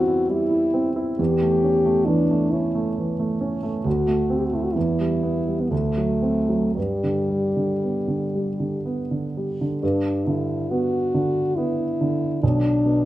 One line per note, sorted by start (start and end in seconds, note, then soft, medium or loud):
0.00 1.15 E2 soft
0.00 0.30 G3 soft
0.00 0.74 C4 soft
0.00 0.08 E4 soft
0.00 0.30 F#4 medium
0.08 0.43 E4 soft
0.30 0.65 G3 soft
0.30 0.90 E4 medium
0.51 0.87 E4 soft
0.74 1.10 C4 soft
0.96 1.19 E4 soft
1.19 3.82 E2 soft
1.19 2.08 G4 medium
1.41 1.77 A3 soft
1.64 1.99 C#4 soft
1.85 2.21 A3 soft
2.06 2.44 E3 soft
2.06 2.53 D4 medium
2.31 2.66 A3 soft
2.51 2.89 C#4 soft
2.51 2.97 E4 soft
2.75 3.11 A3 soft
2.98 3.33 E3 soft
3.19 3.55 A3 soft
3.41 3.77 C#4 soft
3.63 3.85 A3 soft
3.85 4.72 D2 soft
3.85 4.39 F#4 medium
4.08 4.43 A3 soft
4.30 4.66 C4 soft
4.38 4.47 G4 soft
4.46 4.57 F#4 soft
4.52 4.75 A3 soft
4.52 4.66 E4 soft
4.64 4.75 F#4 soft
4.74 5.69 E2 soft
4.74 5.62 E4 medium
5.00 5.38 G3 soft
5.23 5.62 B3 soft
5.48 5.72 G3 soft
5.61 5.72 B3 soft
5.71 6.73 D2 soft
5.71 6.75 A3 soft
5.97 6.38 F#3 soft
6.22 6.65 C4 soft
6.49 6.76 F#3 soft
6.76 9.79 G2 soft
6.76 8.81 G3 soft
7.04 7.46 D3 soft
7.30 7.72 G3 soft
7.56 7.98 D3 soft
7.83 8.24 B3 soft
8.08 8.49 D3 soft
8.35 8.76 G3 soft
8.60 9.00 D3 soft
8.85 9.26 B3 soft
9.11 9.51 D3 soft
9.37 9.75 G3 soft
9.61 9.83 D3 soft
9.83 12.38 G2 soft
9.83 10.27 D4 medium
10.26 10.96 D3 soft
10.26 10.72 E4 soft
10.70 11.40 B3 soft
10.70 11.57 F#4 medium
11.14 11.83 D3 soft
11.56 12.26 B3 soft
11.56 12.42 E4 medium
12.01 12.43 D3 soft
12.43 13.05 B1 soft
12.43 13.05 D4 medium
12.86 13.05 B2 soft